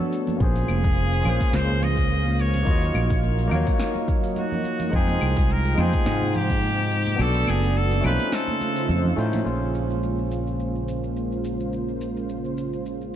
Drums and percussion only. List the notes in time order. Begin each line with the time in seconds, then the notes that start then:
0.12 shaker
0.27 muted conga, high conga, low conga, shaker
0.40 kick, muted conga, shaker
0.56 open hi-hat, shaker
0.68 high conga, claves, shaker
0.84 kick, open hi-hat, muted conga, shaker
0.98 shaker
1.12 open hi-hat, muted conga, shaker
1.25 high conga, low conga, claves, shaker
1.41 kick, open hi-hat, shaker
1.53 snare, muted conga, shaker
1.70 high conga, shaker
1.82 muted conga, low conga, shaker
1.97 kick, open hi-hat, shaker
2.10 high conga, shaker
2.25 muted conga, shaker
2.39 shaker
2.54 open hi-hat, muted conga, high conga, shaker
2.67 kick, shaker
2.82 open hi-hat, shaker
2.94 muted conga, high conga, claves, shaker
3.10 kick, open hi-hat, shaker
3.23 muted conga, shaker
3.39 open hi-hat, shaker
3.51 high conga, low conga, claves, shaker
3.67 kick, open hi-hat, muted conga, shaker
3.80 snare, shaker
3.95 muted conga, high conga, shaker
4.08 kick, shaker
4.24 open hi-hat, shaker
4.36 muted conga, high conga, shaker
4.52 low conga, shaker
4.64 muted conga, shaker
4.80 open hi-hat, high conga, low conga, shaker
4.93 kick, shaker
5.08 open hi-hat, muted conga, shaker
5.21 high conga, claves, shaker
5.37 kick, open hi-hat, muted conga, shaker
5.50 shaker
5.65 open hi-hat, shaker
5.78 muted conga, high conga, low conga, claves, shaker
5.93 kick, open hi-hat, shaker
6.06 snare, muted conga, shaker
6.22 high conga, shaker
6.35 low conga, shaker
6.50 kick, open hi-hat, muted conga, shaker
6.63 high conga, shaker
6.79 muted conga, shaker
6.91 shaker
7.06 open hi-hat, high conga, shaker
7.19 muted conga, claves, shaker
7.35 open hi-hat, shaker
7.47 muted conga, high conga, claves, shaker
7.63 open hi-hat, shaker
7.76 shaker
7.91 open hi-hat, muted conga, shaker
8.04 high conga, low conga, claves, shaker
8.20 open hi-hat, muted conga, shaker
8.32 snare, shaker
8.48 open hi-hat, high conga, shaker
8.61 muted conga, shaker
8.76 open hi-hat, shaker
8.89 muted conga, high conga, shaker
9.05 low conga, shaker
9.18 shaker
9.33 open hi-hat, muted conga, high conga, low conga, shaker
9.46 shaker
9.62 shaker
9.75 shaker
9.90 shaker
10.03 shaker
10.19 shaker
10.31 shaker
10.47 shaker
10.60 shaker
10.75 shaker
10.88 shaker
11.04 shaker
11.17 shaker
11.32 shaker
11.44 shaker
11.60 shaker
11.73 shaker
11.88 shaker
12.01 shaker
12.17 shaker
12.29 shaker
12.45 shaker
12.58 shaker
12.73 shaker
12.86 shaker
13.01 shaker